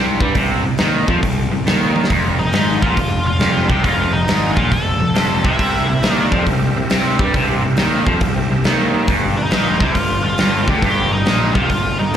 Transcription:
Already playing: C2 C3
0.20 G2 G3, kick
0.35 C2 C3, kick, open hi-hat
0.65 C2 C3
0.78 D#2 D#3, snare, open hi-hat
1.08 F2 F3, kick
1.23 C2 C3, kick, open hi-hat
1.51 C2 C3
1.66 D#2 D#3, snare, open hi-hat
1.96 high tom
2.04 snare
2.10 F1 F2, kick, open hi-hat
2.39 F1 F2 D#4
2.53 G#1 G#2, snare, open hi-hat
2.82 A#1 A#2 F4, kick
2.97 F1 F2, kick, open hi-hat
3.26 F1 F2 F4
3.40 F1 F2, snare, open hi-hat
3.69 C2 C3 G4, kick
3.83 F1 F2 F4, kick, open hi-hat
4.13 F1 F2 D#4
4.28 G#1 G#2, snare, open hi-hat
4.56 A#1 A#2 F4, kick
4.71 F1 F2 A4, kick, open hi-hat
5.00 F1 F2
5.14 F1 F2, snare, open hi-hat
5.43 C2 C3 E4, kick
5.59 C2 C3 C4 G4 A#4 E5, kick, open hi-hat
5.89 C2 C3
6.03 D#2 D#3, snare, open hi-hat
6.13 D4
6.32 F2 F3, kick
6.46 C2 C3, kick, open hi-hat
6.77 C2 C3
6.90 C2 C3, snare, open hi-hat
7.19 G2 G3, kick
7.34 C2 C3, kick, open hi-hat
7.64 C2 C3
7.77 D#2 D#3, snare, open hi-hat
8.06 F2 F3, kick
8.21 C2 C3, kick, open hi-hat
8.51 C2 C3
8.64 D#2 D#3, snare, open hi-hat
9.08 G1 G2 F4 G4 B4 D5, kick, open hi-hat
9.37 G1 G2 D#4
9.50 A#1 A#2, snare, open hi-hat
9.80 C2 C3 F4, kick
9.95 G1 G2, kick, open hi-hat
10.24 G1 G2 F4
10.38 G1 G2, snare, open hi-hat
10.68 D2 D3 G4, kick
10.82 G1 G2 G4, kick, open hi-hat
11.12 G1 G2 D#4
11.26 A#1 A#2, snare, open hi-hat
11.55 C2 C3 F4, kick
11.69 G1 G2, kick, open hi-hat
11.99 G1 G2 D#4

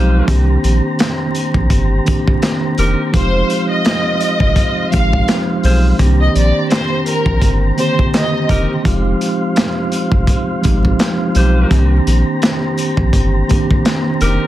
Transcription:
Already playing: B1 F3 G#3 C4 D#4 F4 G4 C5 F5
0.26 C2 D#3 A#3 C4 D4 G4 A#5, kick, closed hi-hat, sleigh bells
0.64 A#1, closed hi-hat, sleigh bells
0.99 snare, clap, closed hi-hat, sleigh bells
1.35 closed hi-hat, sleigh bells
1.54 A#1, kick
1.70 G1, kick, closed hi-hat, sleigh bells
2.05 D#3 A#3 C4 D4 G4, kick, closed hi-hat, sleigh bells
2.28 kick
2.42 snare, clap, closed hi-hat, sleigh bells
2.78 F1 D#4 G4 A#4, closed hi-hat, sleigh bells
3.12 F1 F3 G#3 C4 D#4 F4 G4 C5 F5, kick, closed hi-hat, sleigh bells
3.50 closed hi-hat, sleigh bells
3.70 D#5
3.85 snare, clap, closed hi-hat, sleigh bells
4.20 closed hi-hat, sleigh bells
4.40 G1, kick
4.56 kick, closed hi-hat, sleigh bells
4.90 G#1 F3 G#3 C4 D#4 G4 F5, kick, closed hi-hat, sleigh bells
5.13 kick
5.28 snare, clap, closed hi-hat, sleigh bells
5.63 B1 F4 G#4 C5, open hi-hat, sleigh bells
5.98 C2 D#3 A#3 C4 D4 G4 A#5, kick, closed hi-hat, sleigh bells
6.20 D#5
6.35 A#1 D5, closed hi-hat, sleigh bells
6.70 C5, snare, clap, closed hi-hat, sleigh bells
7.06 A#4, closed hi-hat, sleigh bells
7.26 A#1, kick
7.42 G1, kick, closed hi-hat, sleigh bells
7.76 D3 D#3 A#3 C4 G4 C5, closed hi-hat, sleigh bells
7.99 kick
8.14 D#5, snare, clap, closed hi-hat, sleigh bells
8.49 F1 D#4 G4 A#4, kick, closed hi-hat, sleigh bells
8.83 F1 F3 G#3 C4 D#4 F4 G4 F5, kick, closed hi-hat, sleigh bells
9.21 closed hi-hat, sleigh bells
9.56 snare, clap, closed hi-hat, sleigh bells
9.92 closed hi-hat, sleigh bells
10.12 G1, kick
10.27 kick, closed hi-hat, sleigh bells
10.62 G#1 F3 G#3 C4 D#4, kick, closed hi-hat, sleigh bells
10.66 G4
10.85 kick
10.99 snare, clap, closed hi-hat, sleigh bells
11.35 B1 D#4 G4 C5, closed hi-hat, sleigh bells
11.69 C2 D#3 A#3 C4 D4 G4 A#5, kick, closed hi-hat, sleigh bells
12.07 A#1, closed hi-hat, sleigh bells
12.42 snare, clap, closed hi-hat, sleigh bells
12.78 closed hi-hat, sleigh bells
12.97 A#1, kick
13.13 G1, kick, closed hi-hat, sleigh bells
13.47 D#3 A#3 C4 D4, kick, closed hi-hat, sleigh bells
13.51 G4
13.71 kick
13.85 snare, clap, closed hi-hat, sleigh bells
14.21 F1 D#4 G4 A#4, closed hi-hat, sleigh bells

